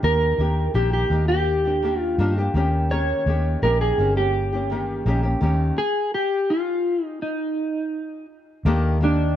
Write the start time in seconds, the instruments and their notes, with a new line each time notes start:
0.03 fingered electric bass D#2, nylon-string guitar D#3 A#3 D4 G4, clean electric guitar A#4
0.38 fingered electric bass D#2, nylon-string guitar D#3 A#3 D4 G4
0.74 fingered electric bass A#1, nylon-string guitar D#3 A#3 D4 G4, clean electric guitar G4
0.93 clean electric guitar G4
1.10 fingered electric bass D#2, nylon-string guitar D#3 A#3 D4 G4
1.28 nylon-string guitar A#3 D4 G4, clean electric guitar G4
1.65 nylon-string guitar A#3 D4 G4
1.83 nylon-string guitar D#3 A#3 D4 G4
2.00 clean electric guitar F4
2.18 fingered electric bass G2, nylon-string guitar D#3 A#3 D4 G4
2.38 nylon-string guitar A#3 D4 G4
2.54 fingered electric bass D#2, nylon-string guitar D#3 A#3 C#4 G4
2.91 nylon-string guitar D#3 A#3 C#4 G4, clean electric guitar C#5
3.26 fingered electric bass D#2, nylon-string guitar D#3 A#3 C#4 G4
3.62 fingered electric bass A#1, nylon-string guitar D#3 A#3 C#4 G4, clean electric guitar A#4
3.81 clean electric guitar G#4
3.98 fingered electric bass G1, nylon-string guitar D#3 A#3 C#4 G4
4.17 nylon-string guitar A#3 C#4 G4, clean electric guitar G4
4.52 nylon-string guitar A#3 C#4 G4
4.70 nylon-string guitar D#3 A#3 C#4 G4
5.06 fingered electric bass A#1, nylon-string guitar D#3 A#3 C#4 G4
5.23 nylon-string guitar A#3 C#4 G4
5.41 fingered electric bass D#2, nylon-string guitar D#3 A#3 C#4 G4
5.78 clean electric guitar G#4
6.14 clean electric guitar G4
6.50 clean electric guitar F4
7.05 clean electric guitar D#4
7.22 clean electric guitar D#4
8.65 fingered electric bass D#2, nylon-string guitar D#3 A#3 D4 G4
9.01 nylon-string guitar D#3 A#3 D4 G4, clean electric guitar D4